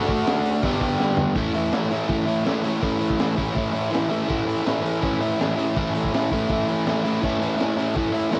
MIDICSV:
0, 0, Header, 1, 3, 480
1, 0, Start_track
1, 0, Tempo, 366300
1, 1783, Time_signature, 4, 2, 24, 8
1, 11003, End_track
2, 0, Start_track
2, 0, Title_t, "Overdriven electric guitar"
2, 0, Program_c, 0, 29
2, 0, Note_on_c, 0, 50, 100
2, 0, Note_on_c, 0, 57, 98
2, 0, Note_on_c, 0, 62, 105
2, 0, Note_on_c, 0, 66, 116
2, 798, Note_off_c, 0, 50, 0
2, 808, Note_off_c, 0, 57, 0
2, 810, Note_off_c, 0, 62, 0
2, 812, Note_on_c, 0, 43, 98
2, 818, Note_off_c, 0, 66, 0
2, 822, Note_on_c, 0, 50, 104
2, 834, Note_on_c, 0, 55, 103
2, 848, Note_on_c, 0, 59, 104
2, 850, Note_on_c, 0, 62, 100
2, 857, Note_on_c, 0, 67, 108
2, 1759, Note_off_c, 0, 50, 0
2, 1763, Note_off_c, 0, 43, 0
2, 1764, Note_on_c, 0, 45, 99
2, 1772, Note_off_c, 0, 55, 0
2, 1778, Note_on_c, 0, 52, 93
2, 1781, Note_off_c, 0, 59, 0
2, 1782, Note_off_c, 0, 62, 0
2, 1786, Note_off_c, 0, 67, 0
2, 1786, Note_on_c, 0, 57, 102
2, 1802, Note_on_c, 0, 61, 97
2, 1803, Note_on_c, 0, 64, 110
2, 2011, Note_off_c, 0, 64, 0
2, 2016, Note_on_c, 0, 64, 77
2, 2040, Note_off_c, 0, 61, 0
2, 2045, Note_on_c, 0, 61, 71
2, 2052, Note_off_c, 0, 57, 0
2, 2058, Note_on_c, 0, 57, 62
2, 2241, Note_off_c, 0, 52, 0
2, 2246, Note_on_c, 0, 52, 71
2, 2265, Note_off_c, 0, 57, 0
2, 2270, Note_on_c, 0, 57, 72
2, 2278, Note_off_c, 0, 64, 0
2, 2279, Note_off_c, 0, 61, 0
2, 2284, Note_on_c, 0, 61, 80
2, 2284, Note_on_c, 0, 64, 86
2, 2491, Note_off_c, 0, 64, 0
2, 2497, Note_off_c, 0, 61, 0
2, 2497, Note_on_c, 0, 64, 74
2, 2503, Note_on_c, 0, 61, 86
2, 2511, Note_off_c, 0, 57, 0
2, 2516, Note_on_c, 0, 57, 69
2, 2518, Note_off_c, 0, 52, 0
2, 2523, Note_on_c, 0, 52, 73
2, 2526, Note_off_c, 0, 45, 0
2, 2531, Note_on_c, 0, 45, 70
2, 2723, Note_off_c, 0, 52, 0
2, 2729, Note_on_c, 0, 52, 81
2, 2748, Note_off_c, 0, 57, 0
2, 2753, Note_on_c, 0, 57, 81
2, 2767, Note_off_c, 0, 61, 0
2, 2767, Note_off_c, 0, 64, 0
2, 2772, Note_on_c, 0, 61, 79
2, 2772, Note_on_c, 0, 64, 89
2, 2955, Note_off_c, 0, 64, 0
2, 2960, Note_on_c, 0, 64, 78
2, 2979, Note_off_c, 0, 61, 0
2, 2984, Note_on_c, 0, 61, 69
2, 2992, Note_off_c, 0, 57, 0
2, 2998, Note_on_c, 0, 57, 62
2, 3208, Note_off_c, 0, 52, 0
2, 3213, Note_on_c, 0, 52, 77
2, 3221, Note_off_c, 0, 57, 0
2, 3226, Note_on_c, 0, 57, 80
2, 3229, Note_off_c, 0, 61, 0
2, 3234, Note_on_c, 0, 61, 81
2, 3247, Note_off_c, 0, 64, 0
2, 3252, Note_on_c, 0, 64, 84
2, 3453, Note_off_c, 0, 64, 0
2, 3458, Note_off_c, 0, 61, 0
2, 3458, Note_on_c, 0, 64, 79
2, 3464, Note_on_c, 0, 61, 75
2, 3468, Note_off_c, 0, 57, 0
2, 3473, Note_on_c, 0, 57, 79
2, 3478, Note_off_c, 0, 52, 0
2, 3483, Note_on_c, 0, 52, 77
2, 3486, Note_off_c, 0, 45, 0
2, 3491, Note_on_c, 0, 45, 69
2, 3685, Note_off_c, 0, 45, 0
2, 3687, Note_off_c, 0, 52, 0
2, 3690, Note_on_c, 0, 45, 103
2, 3692, Note_on_c, 0, 52, 99
2, 3702, Note_off_c, 0, 57, 0
2, 3707, Note_on_c, 0, 57, 109
2, 3713, Note_off_c, 0, 61, 0
2, 3716, Note_off_c, 0, 64, 0
2, 3718, Note_on_c, 0, 61, 114
2, 3721, Note_on_c, 0, 64, 106
2, 3915, Note_off_c, 0, 64, 0
2, 3920, Note_on_c, 0, 64, 78
2, 3932, Note_off_c, 0, 61, 0
2, 3937, Note_on_c, 0, 61, 66
2, 3947, Note_off_c, 0, 57, 0
2, 3952, Note_on_c, 0, 57, 62
2, 4165, Note_off_c, 0, 52, 0
2, 4170, Note_on_c, 0, 52, 75
2, 4175, Note_off_c, 0, 57, 0
2, 4180, Note_on_c, 0, 57, 82
2, 4185, Note_off_c, 0, 61, 0
2, 4191, Note_on_c, 0, 61, 74
2, 4194, Note_off_c, 0, 64, 0
2, 4200, Note_on_c, 0, 64, 85
2, 4401, Note_off_c, 0, 64, 0
2, 4406, Note_on_c, 0, 64, 87
2, 4424, Note_off_c, 0, 61, 0
2, 4426, Note_off_c, 0, 57, 0
2, 4429, Note_on_c, 0, 61, 84
2, 4432, Note_on_c, 0, 57, 79
2, 4436, Note_off_c, 0, 52, 0
2, 4442, Note_on_c, 0, 52, 74
2, 4443, Note_off_c, 0, 45, 0
2, 4448, Note_on_c, 0, 45, 67
2, 4640, Note_off_c, 0, 52, 0
2, 4645, Note_on_c, 0, 52, 77
2, 4648, Note_off_c, 0, 57, 0
2, 4653, Note_on_c, 0, 57, 81
2, 4661, Note_off_c, 0, 61, 0
2, 4667, Note_on_c, 0, 61, 86
2, 4672, Note_off_c, 0, 64, 0
2, 4677, Note_on_c, 0, 64, 84
2, 4878, Note_off_c, 0, 64, 0
2, 4883, Note_on_c, 0, 64, 74
2, 4894, Note_off_c, 0, 61, 0
2, 4899, Note_on_c, 0, 61, 75
2, 4913, Note_off_c, 0, 57, 0
2, 4919, Note_on_c, 0, 57, 63
2, 5121, Note_off_c, 0, 52, 0
2, 5126, Note_on_c, 0, 52, 80
2, 5128, Note_off_c, 0, 57, 0
2, 5133, Note_on_c, 0, 57, 76
2, 5141, Note_off_c, 0, 61, 0
2, 5146, Note_on_c, 0, 61, 84
2, 5156, Note_off_c, 0, 64, 0
2, 5162, Note_on_c, 0, 64, 87
2, 5360, Note_off_c, 0, 64, 0
2, 5362, Note_off_c, 0, 61, 0
2, 5365, Note_on_c, 0, 64, 83
2, 5367, Note_on_c, 0, 61, 85
2, 5378, Note_off_c, 0, 57, 0
2, 5383, Note_on_c, 0, 57, 81
2, 5391, Note_off_c, 0, 52, 0
2, 5396, Note_on_c, 0, 52, 70
2, 5403, Note_off_c, 0, 45, 0
2, 5408, Note_on_c, 0, 45, 68
2, 5582, Note_off_c, 0, 45, 0
2, 5587, Note_on_c, 0, 45, 93
2, 5591, Note_off_c, 0, 52, 0
2, 5596, Note_on_c, 0, 52, 99
2, 5602, Note_off_c, 0, 57, 0
2, 5608, Note_on_c, 0, 57, 94
2, 5619, Note_off_c, 0, 61, 0
2, 5619, Note_off_c, 0, 64, 0
2, 5624, Note_on_c, 0, 64, 105
2, 5625, Note_on_c, 0, 61, 96
2, 5842, Note_off_c, 0, 64, 0
2, 5847, Note_on_c, 0, 64, 72
2, 5859, Note_off_c, 0, 61, 0
2, 5864, Note_on_c, 0, 61, 64
2, 5876, Note_off_c, 0, 57, 0
2, 5881, Note_on_c, 0, 57, 61
2, 6064, Note_off_c, 0, 52, 0
2, 6070, Note_on_c, 0, 52, 78
2, 6081, Note_off_c, 0, 57, 0
2, 6086, Note_on_c, 0, 57, 83
2, 6099, Note_off_c, 0, 61, 0
2, 6104, Note_on_c, 0, 61, 89
2, 6111, Note_off_c, 0, 64, 0
2, 6116, Note_on_c, 0, 64, 84
2, 6318, Note_off_c, 0, 64, 0
2, 6320, Note_off_c, 0, 61, 0
2, 6323, Note_on_c, 0, 64, 82
2, 6325, Note_on_c, 0, 61, 83
2, 6339, Note_off_c, 0, 57, 0
2, 6345, Note_off_c, 0, 52, 0
2, 6345, Note_on_c, 0, 57, 71
2, 6350, Note_on_c, 0, 52, 74
2, 6355, Note_off_c, 0, 45, 0
2, 6360, Note_on_c, 0, 45, 70
2, 6573, Note_off_c, 0, 52, 0
2, 6578, Note_on_c, 0, 52, 82
2, 6579, Note_off_c, 0, 57, 0
2, 6585, Note_on_c, 0, 57, 76
2, 6590, Note_off_c, 0, 61, 0
2, 6595, Note_on_c, 0, 61, 90
2, 6610, Note_off_c, 0, 64, 0
2, 6615, Note_on_c, 0, 64, 91
2, 6818, Note_off_c, 0, 64, 0
2, 6824, Note_on_c, 0, 64, 76
2, 6839, Note_off_c, 0, 61, 0
2, 6844, Note_on_c, 0, 61, 64
2, 6859, Note_off_c, 0, 57, 0
2, 6864, Note_on_c, 0, 57, 61
2, 7060, Note_off_c, 0, 52, 0
2, 7065, Note_on_c, 0, 52, 78
2, 7082, Note_off_c, 0, 57, 0
2, 7085, Note_off_c, 0, 61, 0
2, 7088, Note_on_c, 0, 57, 72
2, 7090, Note_on_c, 0, 61, 85
2, 7097, Note_off_c, 0, 64, 0
2, 7102, Note_on_c, 0, 64, 86
2, 7283, Note_off_c, 0, 64, 0
2, 7288, Note_on_c, 0, 64, 83
2, 7299, Note_off_c, 0, 61, 0
2, 7305, Note_on_c, 0, 61, 78
2, 7313, Note_off_c, 0, 52, 0
2, 7314, Note_off_c, 0, 57, 0
2, 7318, Note_off_c, 0, 45, 0
2, 7318, Note_on_c, 0, 52, 80
2, 7319, Note_on_c, 0, 57, 77
2, 7323, Note_on_c, 0, 45, 69
2, 7555, Note_off_c, 0, 45, 0
2, 7556, Note_off_c, 0, 52, 0
2, 7560, Note_on_c, 0, 45, 88
2, 7561, Note_on_c, 0, 52, 104
2, 7569, Note_off_c, 0, 57, 0
2, 7574, Note_on_c, 0, 57, 103
2, 7579, Note_off_c, 0, 61, 0
2, 7584, Note_on_c, 0, 61, 97
2, 7587, Note_off_c, 0, 64, 0
2, 7593, Note_on_c, 0, 64, 109
2, 7789, Note_off_c, 0, 64, 0
2, 7795, Note_on_c, 0, 64, 67
2, 7814, Note_off_c, 0, 61, 0
2, 7819, Note_on_c, 0, 61, 74
2, 7830, Note_off_c, 0, 57, 0
2, 7835, Note_on_c, 0, 57, 57
2, 8023, Note_off_c, 0, 52, 0
2, 8028, Note_on_c, 0, 52, 73
2, 8039, Note_off_c, 0, 57, 0
2, 8044, Note_on_c, 0, 57, 77
2, 8047, Note_off_c, 0, 61, 0
2, 8052, Note_on_c, 0, 61, 81
2, 8061, Note_off_c, 0, 64, 0
2, 8067, Note_on_c, 0, 64, 89
2, 8274, Note_off_c, 0, 64, 0
2, 8280, Note_on_c, 0, 64, 88
2, 8286, Note_off_c, 0, 61, 0
2, 8291, Note_on_c, 0, 61, 71
2, 8297, Note_off_c, 0, 57, 0
2, 8300, Note_off_c, 0, 52, 0
2, 8302, Note_on_c, 0, 57, 76
2, 8305, Note_on_c, 0, 52, 75
2, 8308, Note_off_c, 0, 45, 0
2, 8313, Note_on_c, 0, 45, 67
2, 8508, Note_off_c, 0, 52, 0
2, 8514, Note_on_c, 0, 52, 74
2, 8521, Note_off_c, 0, 57, 0
2, 8527, Note_off_c, 0, 61, 0
2, 8527, Note_on_c, 0, 57, 80
2, 8532, Note_on_c, 0, 61, 76
2, 8543, Note_off_c, 0, 64, 0
2, 8549, Note_on_c, 0, 64, 89
2, 8752, Note_off_c, 0, 64, 0
2, 8757, Note_on_c, 0, 64, 73
2, 8783, Note_off_c, 0, 61, 0
2, 8788, Note_on_c, 0, 61, 72
2, 8796, Note_off_c, 0, 57, 0
2, 8801, Note_on_c, 0, 57, 58
2, 8994, Note_off_c, 0, 52, 0
2, 8997, Note_off_c, 0, 57, 0
2, 9000, Note_on_c, 0, 52, 79
2, 9003, Note_on_c, 0, 57, 84
2, 9015, Note_off_c, 0, 61, 0
2, 9021, Note_on_c, 0, 61, 84
2, 9025, Note_off_c, 0, 64, 0
2, 9030, Note_on_c, 0, 64, 80
2, 9226, Note_off_c, 0, 64, 0
2, 9232, Note_on_c, 0, 64, 87
2, 9234, Note_off_c, 0, 61, 0
2, 9239, Note_on_c, 0, 61, 85
2, 9242, Note_off_c, 0, 57, 0
2, 9247, Note_on_c, 0, 57, 70
2, 9253, Note_off_c, 0, 52, 0
2, 9258, Note_on_c, 0, 52, 74
2, 9267, Note_off_c, 0, 45, 0
2, 9272, Note_on_c, 0, 45, 69
2, 9449, Note_off_c, 0, 45, 0
2, 9455, Note_on_c, 0, 45, 95
2, 9456, Note_off_c, 0, 52, 0
2, 9461, Note_on_c, 0, 52, 101
2, 9478, Note_off_c, 0, 57, 0
2, 9478, Note_off_c, 0, 61, 0
2, 9483, Note_on_c, 0, 57, 90
2, 9483, Note_on_c, 0, 61, 99
2, 9493, Note_off_c, 0, 64, 0
2, 9499, Note_on_c, 0, 64, 103
2, 9681, Note_off_c, 0, 64, 0
2, 9686, Note_on_c, 0, 64, 68
2, 9697, Note_off_c, 0, 61, 0
2, 9702, Note_on_c, 0, 61, 68
2, 9720, Note_off_c, 0, 57, 0
2, 9725, Note_on_c, 0, 57, 66
2, 9921, Note_off_c, 0, 52, 0
2, 9926, Note_on_c, 0, 52, 76
2, 9933, Note_off_c, 0, 57, 0
2, 9938, Note_on_c, 0, 57, 76
2, 9948, Note_off_c, 0, 61, 0
2, 9954, Note_on_c, 0, 61, 88
2, 9957, Note_off_c, 0, 64, 0
2, 9962, Note_on_c, 0, 64, 81
2, 10174, Note_off_c, 0, 64, 0
2, 10179, Note_on_c, 0, 64, 78
2, 10189, Note_off_c, 0, 61, 0
2, 10194, Note_on_c, 0, 61, 76
2, 10195, Note_off_c, 0, 57, 0
2, 10200, Note_on_c, 0, 57, 82
2, 10208, Note_off_c, 0, 52, 0
2, 10213, Note_on_c, 0, 52, 69
2, 10216, Note_off_c, 0, 45, 0
2, 10222, Note_on_c, 0, 45, 70
2, 10406, Note_off_c, 0, 52, 0
2, 10412, Note_on_c, 0, 52, 71
2, 10415, Note_off_c, 0, 57, 0
2, 10421, Note_on_c, 0, 57, 79
2, 10436, Note_off_c, 0, 61, 0
2, 10441, Note_on_c, 0, 61, 81
2, 10442, Note_off_c, 0, 64, 0
2, 10447, Note_on_c, 0, 64, 82
2, 10635, Note_off_c, 0, 64, 0
2, 10640, Note_on_c, 0, 64, 73
2, 10646, Note_off_c, 0, 61, 0
2, 10651, Note_on_c, 0, 61, 65
2, 10672, Note_off_c, 0, 57, 0
2, 10677, Note_on_c, 0, 57, 59
2, 10878, Note_off_c, 0, 52, 0
2, 10883, Note_on_c, 0, 52, 71
2, 10894, Note_off_c, 0, 57, 0
2, 10899, Note_on_c, 0, 57, 80
2, 10906, Note_off_c, 0, 61, 0
2, 10911, Note_on_c, 0, 61, 82
2, 10917, Note_off_c, 0, 64, 0
2, 10922, Note_on_c, 0, 64, 91
2, 11003, Note_off_c, 0, 45, 0
2, 11003, Note_off_c, 0, 52, 0
2, 11003, Note_off_c, 0, 57, 0
2, 11003, Note_off_c, 0, 61, 0
2, 11003, Note_off_c, 0, 64, 0
2, 11003, End_track
3, 0, Start_track
3, 0, Title_t, "Drums"
3, 10, Note_on_c, 9, 38, 33
3, 113, Note_on_c, 9, 36, 87
3, 124, Note_on_c, 9, 46, 74
3, 141, Note_off_c, 9, 38, 0
3, 244, Note_off_c, 9, 36, 0
3, 255, Note_off_c, 9, 46, 0
3, 349, Note_on_c, 9, 46, 90
3, 361, Note_on_c, 9, 38, 119
3, 481, Note_off_c, 9, 46, 0
3, 492, Note_off_c, 9, 38, 0
3, 594, Note_on_c, 9, 46, 69
3, 725, Note_off_c, 9, 46, 0
3, 821, Note_on_c, 9, 46, 89
3, 827, Note_on_c, 9, 36, 119
3, 952, Note_off_c, 9, 46, 0
3, 958, Note_off_c, 9, 36, 0
3, 962, Note_on_c, 9, 38, 33
3, 1060, Note_on_c, 9, 46, 61
3, 1062, Note_on_c, 9, 36, 84
3, 1093, Note_off_c, 9, 38, 0
3, 1191, Note_off_c, 9, 46, 0
3, 1194, Note_off_c, 9, 36, 0
3, 1314, Note_on_c, 9, 38, 69
3, 1445, Note_off_c, 9, 38, 0
3, 1532, Note_on_c, 9, 43, 96
3, 1663, Note_off_c, 9, 43, 0
3, 1771, Note_on_c, 9, 46, 76
3, 1776, Note_on_c, 9, 36, 109
3, 1902, Note_off_c, 9, 46, 0
3, 1907, Note_off_c, 9, 36, 0
3, 2011, Note_on_c, 9, 46, 59
3, 2142, Note_off_c, 9, 46, 0
3, 2251, Note_on_c, 9, 46, 78
3, 2263, Note_on_c, 9, 38, 116
3, 2382, Note_off_c, 9, 46, 0
3, 2394, Note_off_c, 9, 38, 0
3, 2499, Note_on_c, 9, 46, 60
3, 2630, Note_off_c, 9, 46, 0
3, 2740, Note_on_c, 9, 36, 114
3, 2741, Note_on_c, 9, 46, 81
3, 2871, Note_off_c, 9, 36, 0
3, 2873, Note_off_c, 9, 46, 0
3, 2985, Note_on_c, 9, 46, 58
3, 3116, Note_off_c, 9, 46, 0
3, 3222, Note_on_c, 9, 46, 84
3, 3233, Note_on_c, 9, 38, 100
3, 3353, Note_off_c, 9, 46, 0
3, 3364, Note_off_c, 9, 38, 0
3, 3463, Note_on_c, 9, 46, 61
3, 3594, Note_off_c, 9, 46, 0
3, 3703, Note_on_c, 9, 46, 80
3, 3704, Note_on_c, 9, 36, 109
3, 3834, Note_off_c, 9, 46, 0
3, 3835, Note_off_c, 9, 36, 0
3, 3943, Note_on_c, 9, 46, 64
3, 4065, Note_on_c, 9, 36, 82
3, 4074, Note_off_c, 9, 46, 0
3, 4183, Note_on_c, 9, 46, 89
3, 4194, Note_on_c, 9, 38, 115
3, 4196, Note_off_c, 9, 36, 0
3, 4314, Note_off_c, 9, 46, 0
3, 4325, Note_off_c, 9, 38, 0
3, 4427, Note_on_c, 9, 46, 60
3, 4429, Note_on_c, 9, 36, 79
3, 4558, Note_off_c, 9, 46, 0
3, 4560, Note_off_c, 9, 36, 0
3, 4666, Note_on_c, 9, 46, 81
3, 4669, Note_on_c, 9, 36, 113
3, 4797, Note_off_c, 9, 46, 0
3, 4800, Note_off_c, 9, 36, 0
3, 4916, Note_on_c, 9, 46, 56
3, 5048, Note_off_c, 9, 46, 0
3, 5162, Note_on_c, 9, 46, 72
3, 5174, Note_on_c, 9, 38, 106
3, 5293, Note_off_c, 9, 46, 0
3, 5305, Note_off_c, 9, 38, 0
3, 5402, Note_on_c, 9, 46, 57
3, 5533, Note_off_c, 9, 46, 0
3, 5635, Note_on_c, 9, 46, 72
3, 5636, Note_on_c, 9, 36, 109
3, 5766, Note_off_c, 9, 46, 0
3, 5767, Note_off_c, 9, 36, 0
3, 5883, Note_on_c, 9, 46, 57
3, 6014, Note_off_c, 9, 46, 0
3, 6110, Note_on_c, 9, 46, 76
3, 6122, Note_on_c, 9, 38, 114
3, 6241, Note_off_c, 9, 46, 0
3, 6253, Note_off_c, 9, 38, 0
3, 6364, Note_on_c, 9, 46, 62
3, 6496, Note_off_c, 9, 46, 0
3, 6588, Note_on_c, 9, 46, 81
3, 6593, Note_on_c, 9, 36, 116
3, 6719, Note_off_c, 9, 46, 0
3, 6724, Note_off_c, 9, 36, 0
3, 6834, Note_on_c, 9, 46, 57
3, 6965, Note_off_c, 9, 46, 0
3, 7080, Note_on_c, 9, 46, 75
3, 7092, Note_on_c, 9, 38, 110
3, 7211, Note_off_c, 9, 46, 0
3, 7223, Note_off_c, 9, 38, 0
3, 7318, Note_on_c, 9, 46, 61
3, 7449, Note_off_c, 9, 46, 0
3, 7555, Note_on_c, 9, 46, 76
3, 7556, Note_on_c, 9, 36, 114
3, 7686, Note_off_c, 9, 46, 0
3, 7687, Note_off_c, 9, 36, 0
3, 7799, Note_on_c, 9, 46, 63
3, 7919, Note_on_c, 9, 36, 79
3, 7930, Note_off_c, 9, 46, 0
3, 8043, Note_on_c, 9, 46, 86
3, 8050, Note_off_c, 9, 36, 0
3, 8055, Note_on_c, 9, 38, 112
3, 8174, Note_off_c, 9, 46, 0
3, 8186, Note_off_c, 9, 38, 0
3, 8277, Note_on_c, 9, 36, 79
3, 8288, Note_on_c, 9, 46, 61
3, 8408, Note_off_c, 9, 36, 0
3, 8419, Note_off_c, 9, 46, 0
3, 8509, Note_on_c, 9, 46, 82
3, 8514, Note_on_c, 9, 36, 113
3, 8640, Note_off_c, 9, 46, 0
3, 8645, Note_off_c, 9, 36, 0
3, 8756, Note_on_c, 9, 46, 54
3, 8887, Note_off_c, 9, 46, 0
3, 8995, Note_on_c, 9, 46, 76
3, 9007, Note_on_c, 9, 38, 104
3, 9126, Note_off_c, 9, 46, 0
3, 9138, Note_off_c, 9, 38, 0
3, 9245, Note_on_c, 9, 46, 60
3, 9376, Note_off_c, 9, 46, 0
3, 9479, Note_on_c, 9, 36, 105
3, 9488, Note_on_c, 9, 49, 90
3, 9610, Note_off_c, 9, 36, 0
3, 9619, Note_off_c, 9, 49, 0
3, 9722, Note_on_c, 9, 46, 57
3, 9853, Note_off_c, 9, 46, 0
3, 9960, Note_on_c, 9, 46, 79
3, 9972, Note_on_c, 9, 38, 116
3, 10091, Note_off_c, 9, 46, 0
3, 10103, Note_off_c, 9, 38, 0
3, 10204, Note_on_c, 9, 46, 59
3, 10335, Note_off_c, 9, 46, 0
3, 10433, Note_on_c, 9, 36, 117
3, 10442, Note_on_c, 9, 46, 77
3, 10564, Note_off_c, 9, 36, 0
3, 10573, Note_off_c, 9, 46, 0
3, 10674, Note_on_c, 9, 46, 56
3, 10805, Note_off_c, 9, 46, 0
3, 10906, Note_on_c, 9, 46, 72
3, 10918, Note_on_c, 9, 38, 106
3, 11003, Note_off_c, 9, 38, 0
3, 11003, Note_off_c, 9, 46, 0
3, 11003, End_track
0, 0, End_of_file